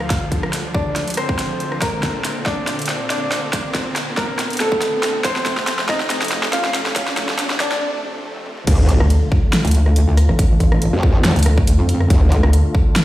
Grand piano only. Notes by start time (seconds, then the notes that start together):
Already playing: F4 F5
0.75 D4 D5
1.17 C4 C5
1.82 A#3 A#4
2.46 D4 D5
3.10 D4 D5
4.17 A#3 A#4
4.60 A3 A4
5.25 C4 C5
5.89 D#4 D#5
6.53 F4 F5
7.60 D4 D5